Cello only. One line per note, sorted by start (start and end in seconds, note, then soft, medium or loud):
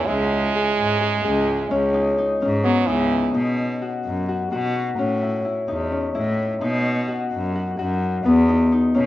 0.07 0.64 C#2 medium
0.78 1.16 G#2 medium
1.25 1.63 C#2 medium
1.72 2.29 C#2 medium
2.42 2.80 G#2 medium
2.89 3.27 C#2 medium
3.35 3.92 B2 medium
4.05 4.43 F#2 medium
4.51 4.89 B2 medium
4.98 5.56 A2 medium
5.68 6.07 E2 medium
6.15 6.54 A2 medium
6.62 7.20 B2 medium
7.33 7.71 F#2 medium
7.79 8.17 F#2 medium
8.25 8.82 E2 medium
8.96 9.06 B2 medium